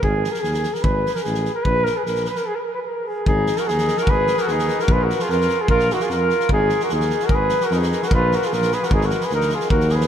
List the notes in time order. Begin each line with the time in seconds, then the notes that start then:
0.02 G#1 G#4, kick
0.24 snare
0.32 A#4, snare
0.41 D#2 G#4, snare
0.54 snare
0.63 snare
0.74 A#4, snare
0.82 G#1 B4, kick
1.06 snare
1.15 A#4, snare
1.24 A1 G#4, snare
1.34 snare
1.45 snare
1.54 A#4
1.63 A#1 B4, kick
1.84 A#4, snare
1.97 G#4
2.05 A#1 A#4, snare
2.15 snare
2.25 B4, snare
2.35 A#4, snare
2.47 G#4
2.55 A#4
2.60 B4
2.64 A#4
2.75 B4
2.86 A#4
3.08 G#4
3.26 G#1 D#4 G#4, kick
3.47 snare
3.56 A#4, snare
3.60 F#4
3.67 D#2 D#4 G#4, snare
3.78 snare
3.88 snare
3.97 A#4, snare
4.02 F#4
4.07 G#1 B4, kick
4.11 G#4
4.27 snare
4.37 A#4, snare
4.42 F#4
4.47 D#2 G#4, snare
4.52 D#4
4.59 snare
4.68 snare
4.79 F#4 A#4, snare
4.88 A#1 B4, kick
4.93 F4
5.03 F#4 A#4
5.10 snare
5.19 F4 G#4, snare
5.29 F2 F4 A#4, snare
5.41 snare
5.49 snare
5.61 F4 G#4
5.68 A#1 F4 A#4, kick
5.79 snare
5.90 D#4 F#4, snare
6.00 F4 G#4, snare
6.09 F2 A#4, snare
6.14 F4
6.29 snare
6.40 snare
6.49 G#1 D#4 G#4, kick
6.69 snare
6.80 F#4, snare
6.84 A#4
6.89 D#2 G#4, snare
6.94 D#4
7.00 snare
7.10 snare
7.20 F#4, snare
7.26 A#4, kick
7.32 G#1 G#4 B4
7.49 snare
7.61 F#4, snare
7.66 A#4
7.71 F2 D#4, snare
7.79 G#4, snare
7.92 snare
8.03 F#4, snare
8.08 A#4, kick
8.12 A#1 F4 B4
8.32 F#4, snare
8.36 A#4
8.42 F4, snare
8.47 G#4
8.52 A#1 F4 A#4, snare
8.62 snare
8.72 G#4 B4, snare
8.83 F#4 A#4, snare
8.90 G#1 G#4, kick
8.95 D#4
9.01 snare
9.05 F#4 A#4
9.10 snare
9.21 B4, snare
9.25 G#4
9.30 D2 A#4, snare
9.35 D#4
9.41 snare
9.49 snare
9.54 F4 G#4
9.60 snare
9.70 D#2 F#4 A#4, kick
9.80 snare
9.89 G#4, snare
9.95 B4
10.01 snare